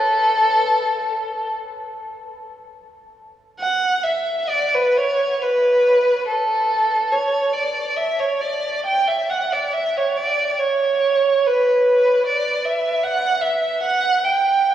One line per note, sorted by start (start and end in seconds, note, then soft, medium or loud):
0.00 1.51 A4 loud
3.59 4.01 F#5 medium
4.04 4.50 E5 medium
4.49 4.73 D5 medium
4.75 4.97 B4 medium
4.97 5.42 C#5 medium
5.42 6.27 B4 medium
6.28 7.09 A4 medium
7.12 7.54 C#5 medium
7.53 7.96 D5 medium
7.97 8.18 E5 medium
8.19 8.40 C#5 medium
8.41 8.84 D5 medium
8.86 9.07 G5 medium
9.08 9.29 E5 medium
9.30 9.51 F#5 medium
9.52 9.73 D5 medium
9.73 9.94 E5 medium
9.97 10.17 C#5 medium
10.17 10.59 D5 medium
10.59 11.45 C#5 medium
11.47 12.26 B4 medium
12.26 12.64 D5 medium
12.65 13.04 E5 medium
13.03 13.43 F#5 medium
13.42 13.83 E5 medium
13.83 14.23 F#5 medium
14.25 14.74 G5 medium